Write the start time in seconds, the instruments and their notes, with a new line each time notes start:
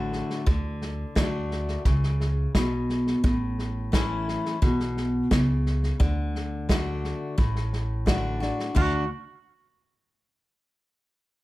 Already playing: upright bass A1, steel-string acoustic guitar A2 D3 A3 D4 F#4
0.12 snare
0.30 snare
0.46 upright bass D2, steel-string acoustic guitar D3, kick, snare
0.82 snare
1.15 upright bass D2, steel-string acoustic guitar D3 A3 D4 F#4, kick, snare, hi-hat pedal
1.51 snare
1.68 snare
1.85 upright bass C#2, steel-string acoustic guitar C#3, kick, snare
2.03 snare
2.20 snare
2.55 upright bass B1, steel-string acoustic guitar B2, kick, snare, hi-hat pedal
2.89 snare
3.07 snare
3.24 upright bass A1, steel-string acoustic guitar A2, kick, snare
3.59 snare
3.92 steel-string acoustic guitar E3 A3 C#4 E4, kick, snare, hi-hat pedal
4.28 snare
4.45 snare
4.62 upright bass B1, steel-string acoustic guitar B2, kick, snare
4.80 snare
4.97 snare
5.31 upright bass C#2, steel-string acoustic guitar C#3, kick, snare, hi-hat pedal
5.66 snare
5.83 snare
6.00 upright bass D2, steel-string acoustic guitar D3, kick, snare
6.35 snare
6.69 steel-string acoustic guitar D3 A3 D4 F#4, kick, snare, hi-hat pedal
7.04 snare
7.38 upright bass A1, steel-string acoustic guitar A2, kick, snare
7.56 snare
7.73 snare
8.06 steel-string acoustic guitar D3 A3 D4 F#4, kick, snare, hi-hat pedal
8.40 steel-string acoustic guitar D4 F#4, snare
8.59 snare
8.75 upright bass D2, steel-string acoustic guitar D3 A3 D4 F#4, kick, crash